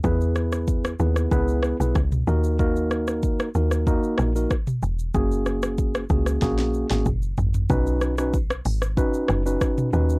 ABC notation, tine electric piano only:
X:1
M:4/4
L:1/16
Q:1/4=94
K:B
V:1 name="Tine electric piano"
[B,EGB]6 [B,EGB]2 [B,EGB]3 [B,EGB] z2 [A,DFA]2 | [A,DFA]6 [A,DFA]2 [A,DFA]3 [A,DFA] z4 | [A,CFG]6 [A,CFG]2 [A,CFG]3 [A,CFG] z4 | [CDFB]3 [CDFB] z4 [CDFB]3 [CDFB]3 [CDFB]2 |]